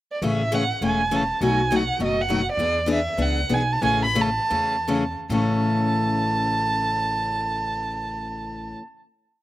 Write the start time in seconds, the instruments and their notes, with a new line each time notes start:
0.12 violin D5
0.22 upright bass A1, steel-string acoustic guitar C#3 E3 A3 C#4 G#4, violin E5
0.52 steel-string acoustic guitar C#3 E3 A3 C#4 G#4, violin F#5
0.81 upright bass E1, steel-string acoustic guitar C#3 E3 A3 C#4 G#4
0.86 violin G#5
1.11 steel-string acoustic guitar C#3 E3 A3 C#4 G#4
1.16 violin A5
1.41 upright bass B1, steel-string acoustic guitar B2 F#3 A3 D#4 F#4, violin G#5
1.71 steel-string acoustic guitar B2 F#3 A3 D#4 F#4
1.75 violin F#5
1.99 upright bass F#1, steel-string acoustic guitar B2 F#3 A3 D#4 F#4
2.04 violin D#5
2.21 violin F#5
2.29 steel-string acoustic guitar B2 F#3 A3 D#4 F#4
2.52 violin D5
2.57 upright bass E2, steel-string acoustic guitar E3 B3 D4 G#4
2.86 steel-string acoustic guitar E3 B3 D4 G#4
2.93 violin E5
3.18 upright bass C#2, steel-string acoustic guitar E3 B3 D4 G#4
3.22 violin F#5
3.49 upright bass B1, steel-string acoustic guitar E3 B3 D4 G#4
3.54 violin G#5
3.72 violin A5
3.82 upright bass A1, steel-string acoustic guitar C#3 E3 A3 C#4 G#4, violin G#5
4.05 violin B5
4.15 steel-string acoustic guitar C#3 E3 A3 C#4 G#4
4.21 violin A5
4.50 upright bass E2, steel-string acoustic guitar C#3 E3 A3 C#4 G#4
4.88 steel-string acoustic guitar C#3 E3 A3 C#4 G#4
5.29 upright bass A1, steel-string acoustic guitar A2 C#3 E3 A3 C#4, violin A5